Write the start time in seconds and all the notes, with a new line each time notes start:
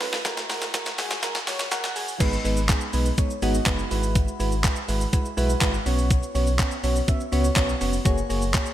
0.01 F#3 C#4 B4, snare, open hi-hat
0.13 snare
0.25 G#3 F#4 A#4, kick, snare, closed hi-hat, shaker
0.37 snare, shaker
0.50 G#3 F#4 A#4, snare, open hi-hat, shaker
0.62 snare, shaker
0.74 G#3 F#4 A#4, kick, snare, closed hi-hat, shaker
0.86 snare, shaker
0.98 G#3 F#4 G#4, snare, open hi-hat, shaker
1.11 snare, shaker
1.22 G#3 F#4 A#4, kick, snare, closed hi-hat, shaker
1.35 snare, shaker
1.47 G#3 F#4 C#5, snare, open hi-hat, shaker
1.59 snare, shaker
1.71 G#3 F#4 A#4 F#5, snare, closed hi-hat, shaker
1.84 snare, shaker
1.96 G#3 F#4 G#4, open hi-hat, shaker
2.08 shaker
2.20 G#1 G#3 B3 D#4 B4, kick, closed hi-hat, crash, shaker
2.33 shaker
2.44 G#1 G#3 B3 D#4 B4, open hi-hat, shaker
2.57 shaker
2.69 G#3 B3 D#4 G#4, kick, clap, closed hi-hat, shaker
2.81 shaker
2.93 B1 G#3 B3 D#4 B4, open hi-hat, shaker
3.06 shaker
3.18 G#3 B3 D#4 C#5, kick, closed hi-hat, shaker
3.30 shaker
3.42 G#1 G#3 B3 D#4 F#4, open hi-hat, shaker
3.54 shaker
3.66 F#1 G#3 B3 D#4 B4, kick, clap, closed hi-hat, shaker
3.79 shaker
3.91 G#1 G#3 E4 F#4 B4, open hi-hat, shaker
4.03 shaker
4.15 kick, closed hi-hat, shaker
4.28 shaker
4.39 G#1 G#3 E4 F#4 B4, open hi-hat, shaker
4.52 shaker
4.64 G#3 E4 F#4 B4, kick, clap, closed hi-hat, shaker
4.76 shaker
4.88 G#1 G#3 E4 F#4 B4, open hi-hat, shaker
5.01 shaker
5.13 G#3 E4 F#4 B4, kick, closed hi-hat, shaker
5.25 shaker
5.37 B1 G#3 E4 F#4 B4, open hi-hat, shaker
5.50 shaker
5.61 G#1 G#3 E4 F#4 B4, kick, clap, closed hi-hat, shaker
5.74 shaker
5.86 B1 B3 C#4 F#4 C#5, open hi-hat, shaker
5.98 shaker
6.11 kick, closed hi-hat, shaker
6.23 shaker
6.35 B1 B3 C#4 F#4 C#5, open hi-hat, shaker
6.47 shaker
6.59 B3 C#4 F#4 C#5, kick, clap, closed hi-hat, shaker
6.71 shaker
6.83 B1 B3 C#4 F#4 C#5, open hi-hat, shaker
6.96 shaker
7.08 B3 C#4 F#4 E5, kick, closed hi-hat, shaker
7.20 shaker
7.32 C#2 B3 C#4 F#4 C#5, open hi-hat, shaker
7.44 shaker
7.56 B1 B3 C#4 F#4 C#5, kick, clap, closed hi-hat, shaker
7.69 shaker
7.81 F1 B3 C#4 F#4 C#5, open hi-hat, shaker
7.93 shaker
8.05 F#1 A#3 F#4 G#4 C#5, kick, closed hi-hat, shaker
8.18 shaker
8.29 F#1 A#3 F#4 G#4 C#5, open hi-hat, shaker
8.42 shaker
8.54 A#3 F#4 G#4 C#5, kick, clap, closed hi-hat, shaker
8.66 shaker